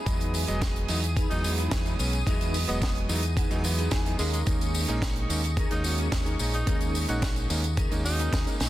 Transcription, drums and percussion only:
0.06 kick, closed hi-hat, tambourine
0.21 closed hi-hat, tambourine
0.34 open hi-hat, tambourine
0.48 closed hi-hat, tambourine
0.61 kick, snare, closed hi-hat, tambourine
0.76 closed hi-hat
0.88 open hi-hat, tambourine
1.03 closed hi-hat, tambourine
1.17 kick, closed hi-hat, tambourine
1.31 closed hi-hat, tambourine
1.44 open hi-hat, tambourine
1.58 closed hi-hat, tambourine
1.71 kick, snare, closed hi-hat, tambourine
1.86 closed hi-hat, tambourine
1.99 open hi-hat, tambourine
2.13 closed hi-hat, tambourine
2.27 kick, closed hi-hat, tambourine
2.41 closed hi-hat, tambourine
2.54 open hi-hat, tambourine
2.69 closed hi-hat, tambourine
2.82 kick, snare, closed hi-hat, tambourine
2.96 closed hi-hat
3.09 open hi-hat, tambourine
3.23 closed hi-hat, tambourine
3.37 kick, closed hi-hat, tambourine
3.51 closed hi-hat, tambourine
3.64 open hi-hat, tambourine
3.78 closed hi-hat, tambourine
3.91 kick, snare, closed hi-hat, tambourine
4.06 closed hi-hat, tambourine
4.19 open hi-hat, tambourine
4.34 closed hi-hat, tambourine
4.47 kick, closed hi-hat, tambourine
4.61 closed hi-hat, tambourine
4.74 open hi-hat, tambourine
4.88 closed hi-hat, tambourine
5.02 kick, snare, closed hi-hat, tambourine
5.16 closed hi-hat
5.30 open hi-hat, tambourine
5.44 closed hi-hat, tambourine
5.57 kick, closed hi-hat, tambourine
5.71 closed hi-hat, tambourine
5.84 open hi-hat, tambourine
5.98 closed hi-hat, tambourine
6.12 kick, snare, closed hi-hat, tambourine
6.26 closed hi-hat, tambourine
6.39 open hi-hat, tambourine
6.54 closed hi-hat, tambourine
6.67 kick, closed hi-hat, tambourine
6.81 closed hi-hat, tambourine
6.95 open hi-hat, tambourine
7.09 closed hi-hat, tambourine
7.22 kick, snare, closed hi-hat, tambourine
7.36 closed hi-hat, tambourine
7.50 open hi-hat, tambourine
7.64 closed hi-hat, tambourine
7.77 kick, closed hi-hat, tambourine
7.92 closed hi-hat, tambourine
8.06 open hi-hat, tambourine
8.19 closed hi-hat, tambourine
8.33 kick, snare, closed hi-hat, tambourine
8.47 closed hi-hat, tambourine
8.60 snare, open hi-hat, tambourine

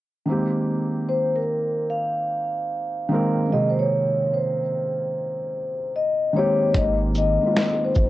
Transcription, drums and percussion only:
6.74 kick, closed hi-hat
7.15 shaker
7.56 finger snap, snare, closed hi-hat
7.95 kick, shaker

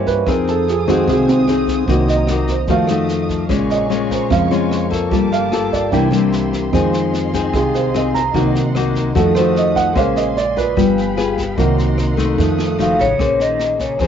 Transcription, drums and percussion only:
0.07 kick, snare
0.27 kick, cross-stick, snare
0.47 snare
0.68 snare
0.87 kick, snare
1.07 kick, cross-stick, snare
1.28 snare
1.48 cross-stick, snare
1.68 kick, snare
1.88 kick, snare
2.08 snare
2.27 cross-stick, snare
2.48 kick, snare
2.67 kick, snare
2.87 cross-stick, snare
3.08 snare
3.29 kick, snare
3.49 kick, cross-stick, snare
3.70 snare
3.91 snare
4.10 kick, snare
4.30 kick, cross-stick, snare
4.51 snare
4.71 cross-stick, snare
4.91 kick, snare
5.11 kick, snare
5.32 snare
5.52 cross-stick, snare
5.72 kick, snare
5.92 kick, snare
6.12 cross-stick, snare
6.32 snare
6.53 kick, snare
6.73 kick, cross-stick, snare
6.93 snare
7.13 snare
7.33 kick, snare
7.53 kick, cross-stick, snare
7.74 snare
7.94 cross-stick, snare
8.14 kick, snare
8.34 kick, snare
8.55 snare
8.75 cross-stick, snare
8.95 kick, snare
9.15 kick, snare
9.35 cross-stick, snare
9.56 snare
9.76 kick, snare
9.96 kick, cross-stick, snare
10.16 snare
10.37 snare
10.57 kick, snare
10.77 kick, cross-stick, snare
10.98 snare
11.18 cross-stick, snare
11.38 kick, snare
11.58 kick, snare
11.78 snare
11.98 cross-stick, snare
12.18 kick, snare
12.38 kick, snare
12.59 cross-stick, snare
12.79 snare
12.99 kick, snare
13.19 kick, cross-stick, snare
13.40 snare
13.59 snare
13.79 kick, snare
13.99 kick, cross-stick, snare

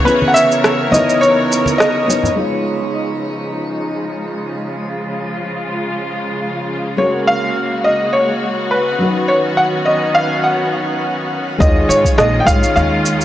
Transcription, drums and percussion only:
0.07 shaker
0.22 high conga
0.36 shaker
0.52 shaker
0.64 cross-stick, shaker
0.92 high conga, shaker
1.10 shaker
1.23 shaker
1.52 shaker
1.66 high conga, shaker
1.80 cross-stick, shaker
2.10 shaker
2.24 low conga, shaker
11.60 kick, shaker
11.90 shaker
12.05 kick, shaker
12.18 cross-stick, shaker
12.47 kick, shaker
12.63 shaker
12.77 shaker
13.06 shaker
13.21 shaker

